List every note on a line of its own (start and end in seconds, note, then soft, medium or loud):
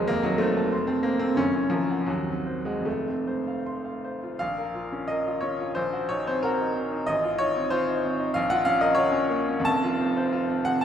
0.00 0.10 D#1 medium
0.00 0.10 F3 loud
0.00 0.10 G#3 loud
0.00 0.10 C4 medium
0.00 0.10 A#4 soft
0.00 0.10 C5 medium
0.00 0.10 A#5 medium
0.08 1.34 F1 medium
0.08 1.34 F2 medium
0.08 0.24 A#3 loud
0.23 0.40 F#3 medium
0.23 0.50 D#4 medium
0.38 0.87 A3 loud
0.38 0.66 C5 medium
0.57 0.82 A5 medium
0.72 0.98 C6 medium
0.87 1.04 C4 medium
0.87 1.14 A5 soft
1.03 1.20 A#3 medium
1.03 1.31 C5 soft
1.19 1.37 C4 medium
1.19 1.37 A4 soft
1.35 2.05 F#1 medium
1.35 2.04 F#2 medium
1.35 1.54 C#4 loud
1.55 1.83 C#4 soft
1.70 2.06 F3 medium
1.70 2.00 A#4 medium
1.90 2.08 F#5 soft
2.06 2.83 D#2 medium
2.06 2.64 F#3 medium
2.27 2.57 C4 soft
2.47 2.78 C5 soft
2.65 2.85 G#3 medium
2.65 2.86 F#5 soft
2.80 4.34 F2 medium
2.85 4.37 F1 soft
2.85 3.65 A3 medium
3.08 3.39 C4 soft
3.27 3.58 C5 soft
3.47 3.77 F5 soft
3.66 3.97 C6 soft
3.85 4.15 F5 soft
4.05 4.34 C5 soft
4.23 4.41 F4 soft
4.39 5.71 A#1 medium
4.39 5.09 F5 medium
4.58 4.86 A#4 soft
4.75 5.03 F4 soft
4.92 5.19 C#4 soft
5.08 5.36 A#4 medium
5.08 5.42 D#5 medium
5.27 5.53 F4 soft
5.41 5.69 C#4 soft
5.41 5.74 C#5 medium
5.60 5.76 F4 soft
5.75 7.04 A#1 medium
5.75 6.09 C5 medium
5.93 6.20 F#4 medium
6.09 6.37 D#4 medium
6.09 6.26 C#5 medium
6.27 6.54 C4 soft
6.27 6.44 C5 medium
6.43 6.70 F#4 medium
6.43 7.07 A#4 medium
6.61 6.86 D#4 medium
6.76 7.01 C4 medium
6.92 7.08 D#4 soft
7.07 8.32 A1 medium
7.07 7.39 D#5 loud
7.24 7.49 F4 medium
7.38 7.65 D#4 medium
7.38 7.71 C#5 loud
7.56 7.82 C4 medium
7.70 7.98 F4 medium
7.70 8.35 C5 loud
7.88 8.14 D#4 medium
8.05 8.30 C4 medium
8.19 8.35 D#4 medium
8.34 9.64 A#1 medium
8.34 8.50 F5 loud
8.50 8.76 F4 medium
8.50 8.66 F#5 loud
8.65 8.91 C#4 medium
8.65 8.81 F5 loud
8.81 9.07 A#4 medium
8.81 8.97 D#5 medium
8.95 9.24 F4 medium
8.95 9.66 C#5 loud
9.12 9.42 C#4 medium
9.30 9.60 A#3 medium
9.48 9.67 C#4 medium
9.60 10.85 F2 medium
9.65 10.85 F1 medium
9.65 10.64 A5 loud
9.84 10.11 F4 medium
10.01 10.27 C4 medium
10.17 10.43 C5 medium
10.33 10.59 F4 medium
10.50 10.76 C4 medium
10.65 10.85 C3 medium
10.65 10.82 F#5 loud
10.81 10.85 A5 loud